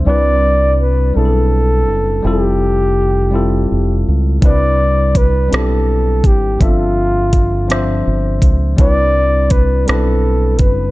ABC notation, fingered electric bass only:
X:1
M:6/8
L:1/8
Q:3/8=55
K:C
V:1 name="Fingered electric bass" clef=bass
C,,3 B,,,2 ^F,,, | F,,,4 F,,, _D,, | C,,3 B,,,2 _A,,, | G,,,4 G,,, _D,, |
C,,3 B,,,2 ^F,,, |]